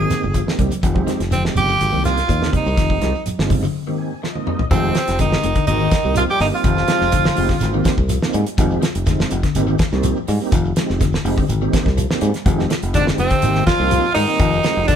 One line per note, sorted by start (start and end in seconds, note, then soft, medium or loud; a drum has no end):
0.00 0.21 D#3 medium
0.00 0.25 A#3 medium
0.00 0.25 C4 medium
0.00 0.25 D#4 medium
0.00 0.25 G4 loud
0.00 0.55 G#4 loud
0.10 snare soft
0.10 closed hi-hat medium
0.10 high conga medium
0.10 shekere medium
0.23 0.42 G1 medium
0.23 low conga medium
0.23 shekere soft
0.34 0.57 F3 medium
0.34 kick medium
0.34 closed hi-hat medium
0.34 shekere medium
0.46 0.73 A#3 medium
0.46 0.73 C4 medium
0.46 0.73 D#4 medium
0.46 0.73 G4 medium
0.46 snare medium
0.59 0.69 C2 medium
0.59 0.81 G3 medium
0.59 kick medium
0.59 closed hi-hat soft
0.59 low conga medium
0.59 shekere soft
0.71 closed hi-hat medium
0.71 high conga medium
0.71 shekere medium
0.83 1.02 F1 loud
0.83 1.05 D#3 medium
0.83 kick medium
0.83 closed hi-hat medium
0.83 shekere medium
0.94 1.22 G#3 medium
0.94 1.22 C4 medium
0.94 1.21 D#4 medium
0.94 1.22 G4 loud
0.94 kick medium
0.94 high conga medium
1.07 1.29 F3 medium
1.07 snare soft
1.07 closed hi-hat medium
1.07 high conga medium
1.07 shekere soft
1.20 1.48 F1 medium
1.20 snare soft
1.20 closed hi-hat soft
1.20 shekere soft
1.31 1.53 D3 medium
1.31 1.43 C4 medium
1.31 closed hi-hat medium
1.31 high conga medium
1.31 shekere medium
1.44 1.71 G#3 medium
1.44 1.71 C4 medium
1.44 1.71 D#4 medium
1.44 1.71 G4 medium
1.44 snare medium
1.55 1.75 G1 medium
1.55 1.67 C3 medium
1.55 2.02 G4 loud
1.55 closed hi-hat soft
1.55 high conga medium
1.55 low conga medium
1.55 shekere medium
1.68 1.90 D3 medium
1.68 shekere medium
1.81 1.90 G#1 medium
1.81 closed hi-hat medium
1.81 shekere medium
1.92 2.21 C2 medium
1.92 2.14 D#3 medium
1.92 2.19 A#3 medium
1.92 2.19 C4 medium
1.92 2.19 D#4 medium
1.92 2.19 G4 medium
1.92 high conga medium
2.04 2.50 F4 loud
2.04 snare soft
2.04 closed hi-hat medium
2.04 high conga medium
2.04 shekere medium
2.18 snare soft
2.18 closed hi-hat soft
2.18 shekere soft
2.28 2.48 D#2 medium
2.28 2.50 F3 medium
2.28 kick medium
2.28 closed hi-hat medium
2.28 shekere medium
2.40 2.68 A#3 medium
2.40 2.67 C4 medium
2.40 2.68 D#4 medium
2.40 2.68 G4 medium
2.40 snare medium
2.53 2.75 G3 medium
2.53 3.23 D#4 medium
2.53 kick medium
2.53 closed hi-hat soft
2.53 low conga medium
2.53 shekere soft
2.66 2.75 C2 medium
2.66 shekere medium
2.77 2.96 F1 loud
2.77 2.99 D#3 medium
2.77 kick medium
2.77 snare soft
2.77 closed hi-hat medium
2.77 shekere medium
2.90 3.16 G#3 medium
2.90 3.16 C4 medium
2.90 3.17 D#4 medium
2.90 3.17 G4 medium
2.90 kick medium
3.01 3.12 C2 medium
3.01 3.23 F3 medium
3.01 snare soft
3.01 closed hi-hat soft
3.01 high conga medium
3.01 shekere soft
3.15 shekere soft
3.26 muted fingered electric bass stroke soft
3.26 closed hi-hat medium
3.26 high conga medium
3.26 shekere medium
3.38 3.66 G1 medium
3.38 3.65 G#3 medium
3.38 3.65 C4 medium
3.38 3.65 D#4 medium
3.38 3.65 F4 loud
3.38 snare medium
3.50 3.61 C3 medium
3.50 kick medium
3.50 open hi-hat medium
3.50 high conga medium
3.50 low conga medium
3.50 shekere medium
3.63 3.84 D3 medium
3.63 shekere medium
3.87 4.14 G#2 medium
3.87 4.09 D#3 medium
3.87 4.14 A#3 medium
3.87 4.14 C4 medium
3.87 4.14 D#4 medium
3.87 4.14 G4 loud
3.98 4.21 G#5 medium
4.23 4.45 F3 medium
4.23 4.68 D#5 medium
4.23 snare soft
4.35 4.62 G#2 medium
4.35 4.62 A#3 medium
4.35 4.62 C4 medium
4.35 4.62 D#4 medium
4.35 4.62 F4 medium
4.35 high tom medium
4.47 4.69 G3 medium
4.47 mid tom medium
4.59 floor tom medium
4.71 4.90 F1 loud
4.71 5.17 C3 medium
4.71 4.93 D#3 medium
4.71 4.98 G#3 medium
4.71 5.16 C4 medium
4.71 4.98 C4 medium
4.71 5.18 C4 medium
4.71 4.98 D#4 medium
4.71 4.98 G4 medium
4.71 kick medium
4.71 closed hi-hat medium
4.71 shekere medium
4.84 shekere soft
4.95 5.17 F3 medium
4.95 snare medium
4.95 closed hi-hat medium
4.95 shekere medium
5.07 5.36 F1 medium
5.07 snare soft
5.07 closed hi-hat medium
5.07 shekere soft
5.19 5.41 D3 medium
5.19 5.65 D#3 medium
5.19 5.46 G#3 medium
5.19 5.46 C4 medium
5.19 5.46 D#4 medium
5.19 5.65 D#4 medium
5.19 5.66 D#4 medium
5.19 5.46 G4 medium
5.19 kick medium
5.19 closed hi-hat medium
5.19 shekere medium
5.32 snare medium
5.32 shekere soft
5.42 5.53 F1 medium
5.42 5.55 C3 medium
5.42 closed hi-hat medium
5.42 shekere medium
5.55 5.78 D3 medium
5.55 kick medium
5.55 closed hi-hat soft
5.55 shekere soft
5.67 5.87 G#1 medium
5.67 6.13 D#3 medium
5.67 5.88 A#3 medium
5.67 5.88 C4 medium
5.67 5.88 D#4 medium
5.67 6.13 D#4 loud
5.67 6.15 D#4 medium
5.67 5.87 G4 medium
5.67 closed hi-hat medium
5.67 shekere medium
5.80 6.02 D#3 medium
5.80 shekere soft
5.91 kick medium
5.91 snare medium
5.91 closed hi-hat medium
5.91 shekere medium
6.04 6.23 C2 medium
6.04 6.31 A#3 medium
6.04 6.31 C4 medium
6.04 6.31 D#4 medium
6.04 6.31 G4 medium
6.04 shekere soft
6.16 6.38 F3 medium
6.16 6.23 F3 medium
6.16 6.23 F4 medium
6.16 6.24 F4 medium
6.16 closed hi-hat medium
6.16 shekere medium
6.29 6.41 G3 medium
6.29 6.41 G4 loud
6.29 6.41 G4 medium
6.29 shekere soft
6.40 6.50 G1 medium
6.40 6.48 D#3 medium
6.40 6.62 G3 medium
6.40 6.47 D#4 medium
6.40 6.48 D#4 medium
6.40 snare soft
6.40 open hi-hat medium
6.40 shekere medium
6.52 7.94 F3 medium
6.52 6.64 A#3 medium
6.52 6.64 C4 medium
6.52 6.64 D#4 medium
6.52 7.95 F4 loud
6.52 6.64 G4 medium
6.52 shekere soft
6.56 7.96 F4 medium
6.64 6.83 F1 loud
6.64 6.87 D#3 medium
6.64 kick medium
6.64 closed hi-hat medium
6.64 shekere medium
6.77 snare soft
6.77 shekere soft
6.87 7.11 F3 medium
6.87 7.15 G#3 medium
6.87 7.15 C4 medium
6.87 7.15 D#4 medium
6.87 7.15 G4 medium
6.87 snare medium
6.87 closed hi-hat medium
6.87 shekere medium
7.01 7.29 F1 medium
7.01 snare soft
7.01 shekere soft
7.12 7.35 D3 medium
7.12 kick medium
7.12 closed hi-hat medium
7.12 shekere medium
7.25 snare medium
7.25 shekere soft
7.35 7.47 F1 medium
7.35 7.49 C3 medium
7.35 7.56 G#3 medium
7.35 7.57 C4 medium
7.35 7.56 D#4 medium
7.35 7.56 G4 loud
7.35 open hi-hat medium
7.35 shekere medium
7.49 7.72 D3 medium
7.49 kick medium
7.49 snare soft
7.49 shekere soft
7.60 7.81 G#1 medium
7.60 snare soft
7.60 closed hi-hat medium
7.60 shekere medium
7.72 7.96 D#3 medium
7.72 8.00 A#3 loud
7.72 8.00 C4 loud
7.72 8.00 D#4 loud
7.72 8.00 G4 loud
7.72 shekere soft
7.84 kick medium
7.84 snare medium
7.84 closed hi-hat medium
7.84 shekere medium
7.97 8.17 C2 medium
7.97 kick medium
7.97 shekere soft
8.09 8.32 F3 medium
8.09 closed hi-hat medium
8.09 shekere medium
8.22 8.43 A#3 loud
8.22 8.43 C4 medium
8.22 8.43 D#4 medium
8.22 8.43 F4 loud
8.22 snare medium
8.22 shekere soft
8.33 8.44 G#2 medium
8.33 8.56 G3 medium
8.33 closed hi-hat medium
8.33 shekere medium
8.47 closed hi-hat medium
8.47 shekere soft
8.58 8.77 F1 loud
8.58 8.80 D#3 medium
8.58 8.85 G#3 loud
8.58 8.85 C4 loud
8.58 8.85 D#4 medium
8.58 8.85 G4 loud
8.58 kick loud
8.58 closed hi-hat medium
8.58 shekere medium
8.71 shekere soft
8.82 9.04 F3 medium
8.82 snare medium
8.82 closed hi-hat medium
8.82 shekere medium
8.95 9.23 F1 medium
8.95 closed hi-hat medium
8.95 shekere soft
9.06 9.28 D3 medium
9.06 9.33 G#3 medium
9.06 9.33 C4 medium
9.06 9.33 D#4 medium
9.06 9.33 F4 loud
9.06 kick medium
9.06 snare soft
9.06 closed hi-hat medium
9.06 shekere medium
9.19 snare medium
9.19 shekere soft
9.31 9.41 F1 medium
9.31 9.42 C3 medium
9.31 closed hi-hat medium
9.31 shekere medium
9.43 9.65 D3 medium
9.43 kick medium
9.43 snare soft
9.43 closed hi-hat medium
9.43 shekere soft
9.55 9.74 G#1 medium
9.55 9.76 A#3 loud
9.55 9.76 C4 medium
9.55 9.76 D#4 medium
9.55 9.76 G4 loud
9.55 closed hi-hat medium
9.55 shekere medium
9.67 9.89 D#3 medium
9.67 shekere soft
9.79 kick medium
9.79 snare medium
9.79 closed hi-hat medium
9.79 shekere medium
9.92 10.11 C2 medium
9.92 10.19 A#3 loud
9.92 10.19 C4 medium
9.92 10.19 D#4 medium
9.92 10.19 G4 loud
9.92 snare soft
9.92 shekere soft
10.03 10.25 F3 medium
10.03 closed hi-hat medium
10.03 shekere medium
10.16 shekere soft
10.28 10.38 G#2 medium
10.28 10.50 G3 medium
10.28 open hi-hat medium
10.28 shekere medium
10.41 10.53 A#3 medium
10.41 10.52 C4 medium
10.41 10.52 D#4 medium
10.41 10.52 G4 loud
10.41 shekere soft
10.52 10.71 F1 loud
10.52 10.74 D#3 medium
10.52 kick medium
10.52 closed hi-hat medium
10.52 shekere medium
10.65 shekere soft
10.76 10.98 F3 medium
10.76 11.03 G#3 medium
10.76 11.03 C4 medium
10.76 11.03 D#4 medium
10.76 11.03 G4 medium
10.76 snare medium
10.76 closed hi-hat medium
10.76 shekere medium
10.89 11.17 F1 medium
10.89 snare soft
10.89 shekere soft
11.00 11.23 D3 medium
11.00 kick medium
11.00 snare soft
11.00 closed hi-hat medium
11.00 shekere medium
11.12 snare medium
11.12 shekere soft
11.25 11.34 F1 medium
11.25 11.36 C3 medium
11.25 11.45 G#3 medium
11.25 11.45 C4 medium
11.25 11.45 D#4 medium
11.25 11.45 G4 loud
11.25 open hi-hat medium
11.25 shekere medium
11.38 11.59 D3 medium
11.38 kick medium
11.38 shekere soft
11.49 11.68 G#1 medium
11.49 closed hi-hat medium
11.49 shekere medium
11.61 11.83 D#3 medium
11.61 11.88 A#3 loud
11.61 11.88 C4 medium
11.61 11.89 D#4 medium
11.61 11.88 G4 loud
11.61 shekere soft
11.73 kick medium
11.73 snare medium
11.73 closed hi-hat medium
11.73 shekere medium
11.86 12.05 C2 medium
11.86 kick medium
11.86 snare soft
11.86 shekere soft
11.97 12.19 F3 medium
11.97 closed hi-hat medium
11.97 shekere medium
12.10 12.30 A#3 medium
12.10 12.30 C4 medium
12.10 12.30 D#4 medium
12.10 12.31 G4 loud
12.10 snare medium
12.10 shekere soft
12.21 12.31 G#2 medium
12.21 12.43 G3 medium
12.21 closed hi-hat medium
12.21 shekere medium
12.34 snare soft
12.34 closed hi-hat medium
12.34 shekere soft
12.46 12.64 F1 loud
12.46 12.68 D#3 medium
12.46 12.73 G#3 loud
12.46 12.73 C4 medium
12.46 12.73 D#4 medium
12.46 12.73 G4 loud
12.46 kick medium
12.46 closed hi-hat medium
12.46 shekere medium
12.59 snare soft
12.59 shekere soft
12.70 12.92 F3 medium
12.70 snare medium
12.70 closed hi-hat medium
12.70 shekere medium
12.83 13.10 F1 medium
12.83 closed hi-hat medium
12.83 shekere soft
12.94 13.16 D3 medium
12.94 13.06 D3 medium
12.94 13.21 G#3 medium
12.94 13.21 C4 medium
12.94 13.06 D4 medium
12.94 13.07 D4 medium
12.94 13.21 D#4 medium
12.94 13.21 G4 medium
12.94 kick medium
12.94 snare soft
12.94 closed hi-hat medium
12.94 shekere medium
13.07 snare medium
13.07 shekere soft
13.18 13.28 F1 medium
13.18 13.63 C3 medium
13.18 13.30 C3 medium
13.18 13.64 C4 loud
13.18 13.64 C4 medium
13.18 closed hi-hat medium
13.18 shekere medium
13.30 13.53 D3 medium
13.30 kick medium
13.30 closed hi-hat medium
13.30 shekere soft
13.42 13.61 G#1 medium
13.42 13.64 A#3 medium
13.42 13.64 C4 medium
13.42 13.63 D#4 medium
13.42 13.64 G4 loud
13.42 closed hi-hat medium
13.42 shekere medium
13.55 13.77 D#3 medium
13.55 snare soft
13.55 shekere soft
13.66 14.11 F3 medium
13.66 14.12 F4 loud
13.66 14.12 F4 medium
13.66 kick medium
13.66 snare medium
13.66 closed hi-hat medium
13.66 shekere medium
13.80 13.98 C2 medium
13.80 14.06 A#3 medium
13.80 14.06 C4 medium
13.80 14.06 D#4 medium
13.80 14.06 G4 medium
13.80 shekere soft
13.91 14.13 F3 medium
13.91 closed hi-hat medium
13.91 shekere medium
14.04 shekere soft
14.14 14.25 G#2 medium
14.14 14.83 D#3 medium
14.14 14.37 G3 medium
14.14 14.84 D#4 loud
14.14 14.84 D#4 medium
14.14 open hi-hat medium
14.14 shekere medium
14.27 14.39 A#3 medium
14.27 14.40 C4 medium
14.27 14.39 D#4 medium
14.27 14.40 G4 medium
14.27 shekere soft
14.39 14.58 F1 loud
14.39 14.61 D#3 medium
14.39 kick medium
14.39 closed hi-hat medium
14.39 shekere medium
14.53 shekere soft
14.64 14.85 F3 medium
14.64 14.91 G#3 medium
14.64 14.91 C4 medium
14.64 14.91 D#4 medium
14.64 14.91 G4 medium
14.64 snare medium
14.64 closed hi-hat medium
14.64 shekere medium
14.77 14.96 F1 medium
14.77 shekere soft
14.87 14.96 D3 medium
14.87 14.96 D4 medium
14.87 kick medium
14.87 closed hi-hat medium
14.87 shekere medium